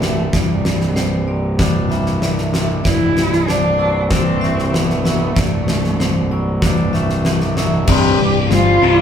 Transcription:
Already playing: fingered electric bass C1, clean electric guitar G2 G3 D4, cello A3
0.01 clean electric guitar C3, vibraphone E5, snare
0.33 fingered electric bass C1, clean electric guitar C2, cello G3, vibraphone D5, kick, snare
0.65 snare
0.81 snare
0.96 clean electric guitar G2, vibraphone C5, snare
1.28 clean electric guitar C3, vibraphone D5
1.59 clean electric guitar D4, kick, snare
1.90 clean electric guitar G3, vibraphone E5, snare
2.06 snare
2.21 clean electric guitar G2, snare
2.38 snare
2.53 clean electric guitar C3, vibraphone E5, snare
2.84 fingered electric bass C1, clean electric guitar D2, cello E4, vibraphone D5, kick, snare
3.17 snare
3.33 snare
3.47 clean electric guitar D3, cello D4, vibraphone C5, snare
3.78 clean electric guitar F#3, vibraphone D5
4.10 cello C4, clean electric guitar D4, kick, snare
4.41 clean electric guitar A3, vibraphone E5, snare
4.59 snare
4.73 clean electric guitar D3, cello B3, snare
4.90 snare
5.05 clean electric guitar F#3, vibraphone E5, snare
5.36 fingered electric bass C1, clean electric guitar D2, cello A3, vibraphone D5, kick, snare
5.68 snare
5.84 snare
6.00 clean electric guitar D3, vibraphone C5, snare
6.31 clean electric guitar F#3, vibraphone D5
6.62 clean electric guitar D4, kick, snare
6.93 clean electric guitar A3, vibraphone E5, snare
7.10 snare
7.25 clean electric guitar D3, snare
7.41 snare
7.57 clean electric guitar F#3, vibraphone E5, snare
7.87 fingered electric bass C1, clean electric guitar C2, overdriven electric guitar C2 G2 C3, cello G4, vibraphone D5, kick, snare, crash
8.19 fingered electric bass C1, overdriven electric guitar C2 G2, clean electric guitar G2
8.50 fingered electric bass G1, overdriven electric guitar C2 G2, clean electric guitar G2, cello F4, vibraphone C5, snare
8.82 fingered electric bass C1, overdriven electric guitar C2 G2 C3, clean electric guitar C3, vibraphone D5

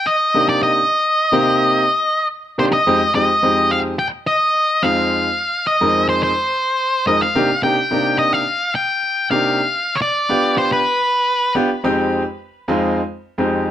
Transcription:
0.07 lead electric guitar D#5
0.34 grand piano C3 A#3 D4 D#4 G4
0.49 lead electric guitar D5
0.63 lead electric guitar D#5
1.32 grand piano C3 A#3 C4 D#4 G4
2.58 grand piano C3 A#3 D4 D#4 G4, lead electric guitar C5
2.73 lead electric guitar D#5
2.87 grand piano F2 G#3 C4 D#4 G4
3.15 grand piano F2 G#3 C4 D#4 G4, lead electric guitar D#5
3.42 grand piano F2 G#3 C4 D#4 G4
3.71 lead electric guitar F5
3.99 lead electric guitar G5
4.27 lead electric guitar D#5
4.82 grand piano F2 G#3 C4 D#4 F4, lead electric guitar F5
5.67 lead electric guitar D#5
5.81 grand piano F2 G#3 C4 D#4 A#4
6.09 lead electric guitar C5
6.23 lead electric guitar C5
7.07 grand piano F2 G#3 C4 D#4 A#4, lead electric guitar D#5
7.21 lead electric guitar F5
7.35 grand piano C3 A#3 D4 D#4 G4
7.63 grand piano C3 A#3 D4 D#4 G4, lead electric guitar G5
7.91 grand piano C3 A#3 D4 D#4 G4
8.19 lead electric guitar D#5
8.33 lead electric guitar F5
8.75 lead electric guitar G5
9.31 grand piano C3 A#3 D4 D#4 G4, lead electric guitar F5
9.95 lead electric guitar C#5
10.02 lead electric guitar D5
10.29 grand piano B3 D4 F4 G4
10.58 lead electric guitar C5
10.72 lead electric guitar B4
11.55 grand piano B3 D4 F4 G4
11.84 grand piano F2 G#3 C4 D#4 G4
12.68 grand piano F2 G#3 C4 D#4 F4
13.38 grand piano F2 G#3 C4 D#4 G4

